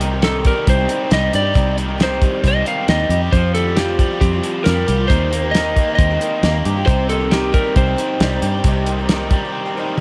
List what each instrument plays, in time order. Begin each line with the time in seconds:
Already playing: fingered electric bass C2, overdriven electric guitar C3 C4 G4
0.01 overdriven electric guitar D#3, twelve-string acoustic guitar G3 C4 D#4 G4, closed hi-hat
0.13 twelve-string acoustic guitar C4 D#4 G4
0.22 twelve-string acoustic guitar C3 G3 C4 D#4 G4, overdriven electric guitar D#3, lead electric guitar A4, snare, closed hi-hat
0.44 twelve-string acoustic guitar G3 C4 D#4 G4, overdriven electric guitar G3, lead electric guitar A#4, kick, closed hi-hat
0.55 twelve-string acoustic guitar C4 D#4 G4
0.67 fingered electric bass C2, overdriven electric guitar C4, lead electric guitar C5, kick, closed hi-hat
0.78 twelve-string acoustic guitar C4 D#4 G4
0.88 overdriven electric guitar D#3, twelve-string acoustic guitar G3 C4 D#4 G4, closed hi-hat
1.10 fingered electric bass C2, twelve-string acoustic guitar C3 G3 C4 D#4 G4, overdriven electric guitar G3, lead electric guitar D#5, snare, closed hi-hat
1.22 twelve-string acoustic guitar C4 D#4 G4
1.33 fingered electric bass G2, twelve-string acoustic guitar G3 C4 D#4 G4, overdriven electric guitar G4, lead electric guitar D5, closed hi-hat
1.42 twelve-string acoustic guitar D#4 G4
1.46 twelve-string acoustic guitar C4
1.54 fingered electric bass C2, twelve-string acoustic guitar C3 G3 C4 D#4 G4, overdriven electric guitar C3, kick, closed hi-hat
1.75 overdriven electric guitar D#3, twelve-string acoustic guitar G3 C4 D#4 G4, closed hi-hat
1.87 twelve-string acoustic guitar C4 D#4 G4
1.98 twelve-string acoustic guitar C3 G3 C4 D#4 G4, overdriven electric guitar D#3, snare, closed hi-hat
2.03 lead electric guitar C5
2.21 twelve-string acoustic guitar G3 C4 D#4 G4, overdriven electric guitar G3, kick, closed hi-hat
2.32 twelve-string acoustic guitar C4 D#4 G4
2.44 fingered electric bass C2, overdriven electric guitar C4, kick, closed hi-hat
2.48 lead electric guitar D#5
2.53 twelve-string acoustic guitar C4 D#4 G4
2.65 overdriven electric guitar D#3, twelve-string acoustic guitar G3 C4 D#4 G4, lead electric guitar F5, closed hi-hat
2.88 fingered electric bass D#2, twelve-string acoustic guitar C3 G3 C4 D#4 G4, overdriven electric guitar G3, lead electric guitar D#5, snare, closed hi-hat
2.99 twelve-string acoustic guitar C4 D#4 G4
3.09 fingered electric bass F2, twelve-string acoustic guitar G3 C4 D#4, overdriven electric guitar G4, closed hi-hat
3.13 twelve-string acoustic guitar G4
3.22 twelve-string acoustic guitar C4 D#4 G4
3.31 fingered electric bass F2, overdriven electric guitar F3, twelve-string acoustic guitar F3 C4 F4, lead electric guitar C5, kick, closed hi-hat
3.36 twelve-string acoustic guitar G4
3.54 twelve-string acoustic guitar F3 C4 F4, overdriven electric guitar G3, lead electric guitar A4, closed hi-hat
3.59 twelve-string acoustic guitar G4
3.67 twelve-string acoustic guitar C4 F4 G4
3.76 overdriven electric guitar F3, twelve-string acoustic guitar F3 C4 F4 G4, lead electric guitar G4, snare, closed hi-hat
3.99 twelve-string acoustic guitar F3 C4 F4 G4, overdriven electric guitar G3, kick, closed hi-hat
4.11 twelve-string acoustic guitar C4 F4 G4
4.20 fingered electric bass F2, overdriven electric guitar C4, lead electric guitar G4, kick, closed hi-hat
4.33 twelve-string acoustic guitar C4 F4 G4
4.43 overdriven electric guitar F3, twelve-string acoustic guitar F3 C4 F4 G4, closed hi-hat
4.64 fingered electric bass F2, twelve-string acoustic guitar F3 C4 F4 G4, overdriven electric guitar G3, lead electric guitar A#4, snare, closed hi-hat
4.74 twelve-string acoustic guitar C4 F4 G4
4.87 fingered electric bass C2, twelve-string acoustic guitar F3 C4 F4 G4, overdriven electric guitar G4, closed hi-hat
4.97 twelve-string acoustic guitar C4 F4 G4
5.08 fingered electric bass D#2, twelve-string acoustic guitar D#3 G3 C4 G4 A#4, overdriven electric guitar D#3, lead electric guitar C5, kick, closed hi-hat
5.31 twelve-string acoustic guitar G3 C4 G4 A#4, overdriven electric guitar A#3, closed hi-hat
5.42 twelve-string acoustic guitar C4 G4 A#4
5.51 overdriven electric guitar D#3, twelve-string acoustic guitar D#3, lead electric guitar D#5, snare, closed hi-hat
5.56 twelve-string acoustic guitar G3 C4 G4 A#4
5.76 twelve-string acoustic guitar G3 C4 G4 A#4, overdriven electric guitar A#3, kick, closed hi-hat
5.88 twelve-string acoustic guitar C4 G4 A#4
5.95 fingered electric bass D#2, overdriven electric guitar C4, lead electric guitar D#5, kick, closed hi-hat
6.10 twelve-string acoustic guitar C4 G4 A#4
6.20 overdriven electric guitar D#3, twelve-string acoustic guitar G3 C4 G4 A#4, closed hi-hat
6.43 fingered electric bass D#2, twelve-string acoustic guitar D#3 G3 C4 G4 A#4, overdriven electric guitar A#3, snare, closed hi-hat
6.54 twelve-string acoustic guitar C4 G4 A#4
6.65 fingered electric bass G2, twelve-string acoustic guitar G3 C4 G4 A#4, overdriven electric guitar G4, closed hi-hat
6.77 twelve-string acoustic guitar C4 G4 A#4
6.86 fingered electric bass C2, twelve-string acoustic guitar C3 G3 C4 D#4 G4, overdriven electric guitar C3, lead electric guitar C5, kick, closed hi-hat
7.09 overdriven electric guitar D#3, twelve-string acoustic guitar G3 C4 D#4 G4, lead electric guitar A4, closed hi-hat
7.20 twelve-string acoustic guitar C4 D#4 G4
7.31 twelve-string acoustic guitar C3 G3 C4 D#4 G4, overdriven electric guitar D#3, lead electric guitar G4, snare, closed hi-hat
7.52 twelve-string acoustic guitar G3 C4 D#4 G4, overdriven electric guitar G3, lead electric guitar A#4, kick, closed hi-hat
7.64 twelve-string acoustic guitar C4 D#4 G4
7.76 fingered electric bass C2, overdriven electric guitar C4, lead electric guitar C5, kick, closed hi-hat
7.86 twelve-string acoustic guitar C4 D#4 G4
7.96 overdriven electric guitar D#3, twelve-string acoustic guitar G3 C4 D#4 G4, closed hi-hat
8.20 fingered electric bass C2, twelve-string acoustic guitar C3 G3 C4 D#4 G4, overdriven electric guitar G3, snare, closed hi-hat
8.31 twelve-string acoustic guitar C4 D#4 G4
8.42 fingered electric bass G2, twelve-string acoustic guitar G3 C4 D#4, overdriven electric guitar G4, closed hi-hat
8.46 twelve-string acoustic guitar G4
8.54 twelve-string acoustic guitar C4 D#4 G4
8.64 fingered electric bass C2, overdriven electric guitar C3, twelve-string acoustic guitar C3 G3 C4 D#4, kick, closed hi-hat
8.68 twelve-string acoustic guitar G4
8.86 overdriven electric guitar D#3, twelve-string acoustic guitar G3, closed hi-hat
8.91 twelve-string acoustic guitar C4 D#4 G4
8.99 twelve-string acoustic guitar C4 D#4 G4
9.08 twelve-string acoustic guitar C3, overdriven electric guitar D#3, snare, closed hi-hat
9.12 twelve-string acoustic guitar G3 C4 D#4 G4
9.31 overdriven electric guitar G3, twelve-string acoustic guitar G3 C4 D#4, kick, closed hi-hat
9.35 twelve-string acoustic guitar G4
9.45 twelve-string acoustic guitar C4 D#4 G4
9.52 overdriven electric guitar C4
9.65 twelve-string acoustic guitar C4 D#4 G4
9.74 overdriven electric guitar D#3, twelve-string acoustic guitar G3 C4
9.79 twelve-string acoustic guitar D#4 G4
9.97 overdriven electric guitar G3